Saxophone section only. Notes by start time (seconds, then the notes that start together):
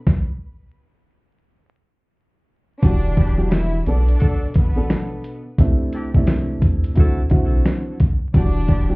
3.18 B3 D4 G4
4.19 D4 F#4 A4
5.93 D4 E4 G4
6.98 E4 F#4 A4
8.69 B3 D4 G4